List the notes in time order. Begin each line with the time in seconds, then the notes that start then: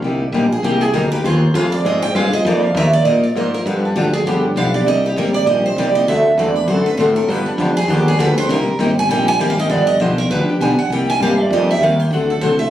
0.02 C2 C3 G3 A#3 D#4 G4
0.32 A#1 C3 G3 A#3 D#4 G4
0.52 G#4
0.63 C2 C3 G3 A#3 D#4 G4
0.81 G#4
0.94 D2 C3 G3 A#3 D#4 G4 A#4
1.12 A#3 D#4 G4 B4
1.24 D#2 G#3 C4 F4 G#4 C5
1.54 F2 G#3 C4 F4 G#4 F5
1.72 D5
1.85 G#2 G#3 C4 F4 G#4 D#5
2.02 G5
2.15 G2 G#3 C4 F4 G#4 F5
2.33 C4 F4 G#4 D#5, muted fretless electric bass stroke
2.45 F2 F3 A#3 D#4 F4 A#4 D5
2.63 F5
2.75 D#2 F3 A#3 D#4 F4 A#4 E5
2.93 D5
3.05 A#2 F3 A#3 D#4 F4 A#4 D#5
3.24 D5
3.35 G#2 F3 A#3 D#4 F4 A#4 C5
3.54 D#4 F4 A#4
3.66 G2 D3 F3 B3 D4 G4 B4
3.85 D4
3.96 D2 D3 F3 B3 D4 F4 G4
4.13 G#4
4.26 G1 D3 F3 B3 D4 G4
4.56 B1 D3 F3 B3 D4 G4 F5
4.74 B3 D4 G4 D5
4.86 C2 C3 G3 A#3 D#4 G4 D#5
5.06 G4
5.16 G#1 C3 G3 A#3 D#4 G4 A#4
5.34 D5
5.46 A#1 C3 G3 A#3 D#4 G4 D#5
5.66 C5
5.76 C2 C3 G3 A#3 D#4 G4 D5
5.95 A#3 D#4 G4 D#5
6.07 D2 D3 A3 C4 F#4 A4 E5
6.38 E2 D3 A3 C4 F#4 A4 D5
6.56 B4
6.68 F#2 D3 A3 C4 F#4 A4 C5
6.86 B4, muted fretless electric bass stroke
6.97 A2 D3 A3 C4 F#4 A4 C5
7.16 C4 F#4 A4 A#4
7.28 G2 D3 F3 B3 D4 G4 B4
7.45 D4, muted fretless electric bass stroke
7.58 F2 D3 F3 B3 D4 F4 G4
7.77 G#4
7.88 D#2 D3 F3 B3 D4 G4
8.08 G#4
8.19 D2 D3 F3 B3 D4 G4 B4
8.37 B3 D4 G4 C5
8.49 C2 C3 G3 A#3 D#4 G4 A#4
8.66 muted fretless electric bass stroke
8.79 G1 C3 G3 A#3 D#4 G4
8.99 G#5
9.09 A#1 C3 G3 A#3 D#4 G4 G5
9.28 G#5
9.39 G#1 C3 G3 A#3 D#4 G4 G5
9.50 F5
9.58 A#3 D#4 G4 D#5
9.69 G1 D3 F3 B3 D4 G4 D5
9.87 D#5
10.00 B1 D3 F3 B3 D4 G4 C5
10.18 A#4
10.30 D2 D3 F3 B3 D4 G4 B4
10.48 B3 D4 G4, muted fretless electric bass stroke
10.61 B1 D3 F3 B3 D4 G4 G#5
10.79 F#5, muted fretless electric bass stroke
10.90 C2 C3 G3 A#3 D#4 G4 G5
11.10 G#5
11.20 G2 C3 G3 A#3 D#4 G4 F5
11.41 D5
11.50 F2 C3 G3 A#3 D#4 G4 D#5
11.70 A#3 D#4 G4 E5
11.81 D#2 C3 G3 A#3 D#4 G4 F5
12.00 G5
12.11 D2 D3 A3 C4 F#4 A4 F#5
12.30 A4
12.41 C2 D3 A3 C4 F#4 A4 C5
12.59 E5